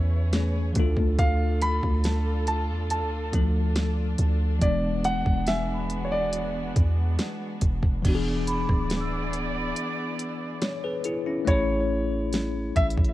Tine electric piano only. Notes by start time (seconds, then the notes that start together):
Already playing: E3 A3 C#4 G#4
0.32 E3 A3 C#4 G#4
0.74 E3 A3
0.78 D4 F4 A4
3.32 F3 A3 D4 A4
4.59 E3 B3 D4
4.65 G#3
8.02 E3 B3
8.06 D4 F#4
8.15 G#4
10.62 C#5
10.84 G#4 B4
11.05 E4 G#4
11.26 C#4 E4
11.45 A3 C#4 E4
11.49 G#4 C#5